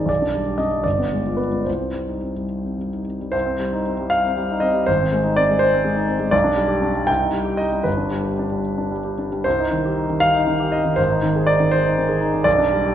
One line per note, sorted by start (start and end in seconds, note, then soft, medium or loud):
0.00 0.11 G#1 soft
0.00 0.11 D#3 soft
0.00 0.12 D#4 soft
0.00 0.12 G#4 soft
0.00 0.12 C5 medium
0.00 0.09 D5 medium
0.06 0.81 B1 soft
0.06 0.59 D5 medium
0.22 0.42 D4 soft
0.34 0.54 G3 soft
0.46 0.66 G4 soft
0.58 0.79 D4 soft
0.58 0.84 D#5 medium
0.71 0.84 G3 soft
0.84 1.64 G1 medium
0.84 1.38 D5 medium
0.98 1.20 B3 soft
1.12 1.34 G#3 soft
1.25 1.47 F4 soft
1.37 1.60 B3 soft
1.37 1.65 B4 medium
1.52 1.66 G#3 soft
1.65 3.30 C2 soft
1.65 3.06 C5 medium
1.80 2.02 C4 soft
1.93 2.16 G3 soft
2.07 2.30 D#4 soft
2.22 2.45 C4 soft
2.36 2.77 G3 soft
2.65 2.87 C4 soft
2.78 3.01 G3 soft
2.93 3.15 D#4 soft
3.07 3.28 C4 soft
3.20 3.34 G3 soft
3.32 4.83 C2 soft
3.32 4.11 C5 medium
3.46 3.67 C4 soft
3.59 3.80 G3 soft
3.73 3.94 D#4 soft
3.86 4.07 C4 soft
4.00 4.35 G3 soft
4.10 4.61 F5 medium
4.25 4.44 C4 soft
4.37 4.57 G3 soft
4.50 4.70 D#4 soft
4.60 4.82 C4 soft
4.60 4.86 D#5 medium
4.74 4.87 G3 soft
4.86 6.29 G#1 soft
4.86 5.36 C5 medium
5.00 5.20 C4 soft
5.12 5.32 G#3 soft
5.24 5.43 D#4 soft
5.36 5.56 C4 soft
5.36 5.60 D5 medium
5.50 5.83 G#3 soft
5.59 6.32 C5 medium
5.74 5.92 C4 soft
5.85 6.04 G#3 soft
5.96 6.16 D#4 soft
6.08 6.28 C4 soft
6.20 6.32 G#3 soft
6.31 7.06 B1 medium
6.31 7.08 D5 medium
6.44 6.64 D4 soft
6.56 6.77 G3 soft
6.68 6.89 G4 soft
6.82 7.03 D4 soft
6.95 7.08 G3 soft
7.07 7.83 C2 soft
7.07 7.59 G5 medium
7.20 7.42 D#4 soft
7.33 7.54 G3 soft
7.45 7.67 G4 soft
7.57 7.80 D#4 soft
7.57 7.85 D#5 medium
7.72 7.86 G3 soft
7.83 9.40 G1 soft
7.83 8.64 B4 medium
7.97 8.19 D4 soft
8.11 8.33 G3 soft
8.24 8.46 G4 soft
8.39 8.60 D4 soft
8.52 8.90 G3 soft
8.78 9.00 D4 soft
8.91 9.13 G3 soft
9.05 9.26 G4 soft
9.19 9.40 D4 soft
9.32 9.45 G3 soft
9.44 10.94 C2 soft
9.44 10.21 C5 medium
9.59 9.79 D#4 soft
9.71 9.92 D#3 soft
9.85 10.05 G4 soft
9.97 10.17 D#4 soft
10.10 10.45 D#3 soft
10.20 10.71 F5 medium
10.35 10.55 D#4 soft
10.47 10.67 D#3 soft
10.60 10.80 G4 soft
10.72 10.93 D#4 soft
10.72 10.97 D#5 medium
10.85 10.98 D#3 soft
10.96 12.41 G#1 medium
10.96 11.47 C5 medium
11.10 11.30 D#4 soft
11.23 11.43 D#3 soft
11.36 11.55 G#4 soft
11.47 11.67 D#4 soft
11.47 11.72 D5 medium
11.60 11.97 D#3 soft
11.71 12.45 C5 medium
11.84 12.04 D#4 soft
11.98 12.17 D#3 soft
12.09 12.28 G#4 soft
12.20 12.40 D#4 soft
12.34 12.46 D#3 soft
12.44 12.95 B1 medium
12.44 12.95 D5 medium
12.58 12.79 D4 soft
12.72 12.92 G3 soft
12.86 12.95 G4 soft